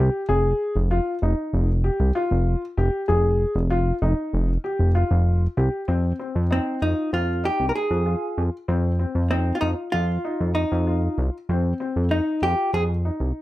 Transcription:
Already playing: grand piano G4
0.29 analog synth bass F1, grand piano G#4
0.76 analog synth bass F1
0.91 grand piano F4
1.22 analog synth bass F1, grand piano D#4
1.53 analog synth bass F1
1.84 grand piano G4
2.00 analog synth bass C2
2.15 grand piano F4
2.31 analog synth bass F1
2.77 analog synth bass F1, grand piano G4
3.08 analog synth bass F1, grand piano G#4
3.55 analog synth bass F1
3.70 grand piano F4
4.02 analog synth bass F1, grand piano D#4
4.33 analog synth bass F1
4.64 grand piano G4
4.79 analog synth bass F1
4.95 grand piano F4
5.11 analog synth bass F1
5.57 analog synth bass C2, grand piano G4
5.88 analog synth bass F2, grand piano C4
6.19 grand piano C4
6.35 analog synth bass F2
6.51 hollow-body jazz guitar C4, grand piano D#4
6.82 analog synth bass F2, hollow-body jazz guitar D#4, grand piano F4
7.13 analog synth bass F2, hollow-body jazz guitar F4
7.44 grand piano D#4, hollow-body jazz guitar G4
7.60 analog synth bass C2
7.69 hollow-body jazz guitar A#4
7.75 hollow-body jazz guitar G#4
7.91 analog synth bass F2
8.06 grand piano F4
8.38 analog synth bass F2
8.68 analog synth bass F2, grand piano C4
8.99 grand piano C4
9.15 analog synth bass F2
9.31 hollow-body jazz guitar C4, grand piano D#4
9.55 hollow-body jazz guitar F4
9.61 analog synth bass F2, hollow-body jazz guitar D#4, grand piano F4
9.92 analog synth bass F2, hollow-body jazz guitar F4
10.25 grand piano D#4
10.40 analog synth bass F2
10.55 hollow-body jazz guitar D#4
10.72 analog synth bass F2
10.87 grand piano F4
11.18 analog synth bass C2
11.49 analog synth bass F2, grand piano C4
11.80 grand piano C4
11.96 analog synth bass F2
12.11 hollow-body jazz guitar D#4, grand piano D#4
12.42 analog synth bass F2, grand piano F4, hollow-body jazz guitar G4
12.73 analog synth bass F2, hollow-body jazz guitar G#4
13.05 grand piano D#4
13.20 analog synth bass C2

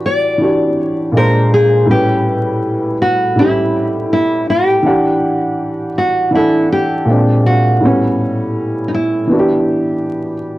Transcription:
Already playing: upright piano E3 D4 F#4 G4
0.06 nylon-string guitar D5
0.38 upright piano E3 D4 F#4
0.44 upright piano G4
0.81 nylon-string guitar C#5
1.12 upright piano A#2 G#3 D4
1.17 nylon-string guitar A#4, upright piano C5
1.54 nylon-string guitar G#4
1.85 upright piano A2 G3 C#4
1.91 nylon-string guitar G4, upright piano B4
3.02 nylon-string guitar F#4
3.35 upright piano A2 G3 C#4, nylon-string guitar E4
3.41 upright piano G4
4.13 nylon-string guitar E4
4.50 nylon-string guitar G4
4.83 upright piano E3 D4 F#5
4.88 upright piano G4
5.98 nylon-string guitar F#4
6.31 upright piano E3 D4 F#5
6.35 nylon-string guitar E4, upright piano A4
6.72 nylon-string guitar G4
7.05 upright piano A#2 G#3 C4
7.11 upright piano D4
7.46 nylon-string guitar F#4
7.80 upright piano A2 G3 B3
7.85 upright piano C#4
8.88 nylon-string guitar D#4
8.94 nylon-string guitar E4
9.27 upright piano E3 B3 D4
9.33 upright piano F#4
9.39 upright piano G4

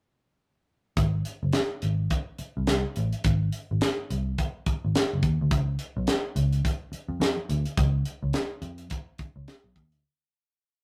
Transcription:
0.97 picked electric bass G#1, kick, closed hi-hat
1.25 closed hi-hat
1.43 picked electric bass F#1
1.53 snare, closed hi-hat
1.82 picked electric bass G#1, closed hi-hat
2.10 kick, closed hi-hat
2.38 muted picked electric bass stroke, closed hi-hat
2.57 picked electric bass C2
2.67 picked electric bass C2, snare, closed hi-hat
2.96 picked electric bass A1, closed hi-hat
3.13 closed hi-hat
3.24 picked electric bass G#1, kick, closed hi-hat
3.52 closed hi-hat
3.71 picked electric bass G#1
3.81 snare, closed hi-hat
4.10 picked electric bass C2, closed hi-hat
4.38 kick, closed hi-hat
4.66 muted picked electric bass stroke, kick, closed hi-hat
4.85 picked electric bass G#1
4.95 snare, closed hi-hat
5.13 picked electric bass F#1
5.23 picked electric bass D#2, kick, closed hi-hat
5.41 picked electric bass D2
5.51 picked electric bass C#2, kick, closed hi-hat
5.79 closed hi-hat
5.97 picked electric bass B1
6.07 snare, closed hi-hat
6.36 picked electric bass C#2, closed hi-hat
6.53 closed hi-hat
6.65 kick, closed hi-hat
6.92 muted picked electric bass stroke, closed hi-hat
7.09 picked electric bass F2
7.20 picked electric bass F2, snare, closed hi-hat
7.49 picked electric bass D2, closed hi-hat
7.66 closed hi-hat
7.77 picked electric bass C#2, kick, closed hi-hat
8.05 closed hi-hat
8.23 picked electric bass C#2
8.33 snare, closed hi-hat
8.62 picked electric bass F2, closed hi-hat
8.78 closed hi-hat
8.90 kick, closed hi-hat
9.18 muted picked electric bass stroke, kick, closed hi-hat
9.36 picked electric bass C#2
9.48 snare, closed hi-hat
9.64 picked electric bass B1
9.76 picked electric bass D#2, kick, closed hi-hat
9.92 picked electric bass D2, closed hi-hat

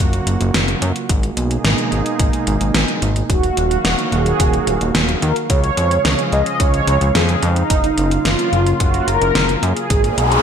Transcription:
Already playing: analog synth pad C#3 F#3 A#3 F4 F#4
0.00 analog synth bass F#1
0.13 closed hi-hat
0.27 analog synth bass F#1, closed hi-hat
0.41 analog synth bass F#1, closed hi-hat
0.54 analog synth bass F#1, snare, closed hi-hat
0.68 closed hi-hat
0.82 analog synth bass F#2, closed hi-hat
0.96 closed hi-hat
1.09 analog synth bass G#1, analog synth pad B2 G#3 A#3 D#4 G#4, kick, closed hi-hat
1.23 closed hi-hat
1.37 analog synth bass B1, closed hi-hat
1.51 closed hi-hat
1.64 analog synth bass G#1, snare, closed hi-hat
1.78 closed hi-hat
1.92 analog synth bass G#1, closed hi-hat
2.06 closed hi-hat
2.19 analog synth bass G#1, kick, closed hi-hat
2.33 closed hi-hat
2.47 analog synth bass G#1, closed hi-hat
2.61 analog synth bass G#1, closed hi-hat
2.75 analog synth bass G#1, snare, closed hi-hat
2.88 closed hi-hat
3.02 analog synth bass G#1, closed hi-hat
3.16 closed hi-hat
3.29 analog synth bass D#1, analog synth pad D#3 F#3 A#3 F#4 F5, analog polysynth F#4, kick, closed hi-hat
3.43 closed hi-hat
3.57 analog synth bass D#1, analog polysynth F#4, closed hi-hat
3.71 closed hi-hat
3.85 analog synth bass D#1, snare, closed hi-hat
3.98 closed hi-hat
4.12 analog synth bass D#1, analog polysynth G#4, closed hi-hat
4.26 closed hi-hat
4.40 analog synth bass D#1, kick, closed hi-hat
4.54 closed hi-hat
4.67 analog synth bass D#1, closed hi-hat
4.81 analog synth bass D#1, closed hi-hat
4.95 analog synth bass D#1, snare, closed hi-hat
5.09 closed hi-hat
5.22 analog synth bass D#2, analog polysynth A#4, closed hi-hat
5.36 closed hi-hat
5.50 analog synth bass C#2, analog synth pad C#3 F3 G#3 G#4, analog polysynth C#5, kick, closed hi-hat
5.64 closed hi-hat
5.77 analog synth bass F2, closed hi-hat
5.91 closed hi-hat
6.05 analog synth bass C#2, snare, closed hi-hat
6.19 closed hi-hat
6.32 analog synth bass C#2, analog polysynth D#5, closed hi-hat
6.46 closed hi-hat
6.60 analog synth bass C#2, analog polysynth C#5, kick, closed hi-hat
6.74 closed hi-hat
6.87 analog synth bass C#2, closed hi-hat
7.01 analog synth bass C#2, closed hi-hat
7.15 analog synth bass F2, analog polysynth G#4, snare, closed hi-hat
7.29 closed hi-hat
7.43 analog synth bass F2, analog polysynth D#4, closed hi-hat
7.56 closed hi-hat
7.70 analog synth bass F#1, analog synth pad C#3 F#3 A#3 F4, kick, closed hi-hat
7.84 closed hi-hat
7.98 analog synth bass F#1, closed hi-hat
8.11 closed hi-hat
8.25 analog synth bass F#1, analog polysynth F4, snare, closed hi-hat
8.39 closed hi-hat
8.53 analog synth bass F#1, closed hi-hat
8.66 closed hi-hat
8.80 analog synth bass F#1, analog polysynth F#4, kick, closed hi-hat
8.94 closed hi-hat
9.08 analog synth bass F#1, analog polysynth A#4, closed hi-hat
9.21 analog synth bass F#1, closed hi-hat
9.35 analog synth bass F#1, snare, closed hi-hat
9.49 closed hi-hat
9.63 analog synth bass F#2, analog polysynth G#4, closed hi-hat
9.77 closed hi-hat
9.90 analog synth bass G#1, analog synth pad B2 G#3 D#4 G#4, kick, closed hi-hat, noise sweep
10.04 closed hi-hat
10.18 analog synth bass B1, closed hi-hat
10.32 closed hi-hat

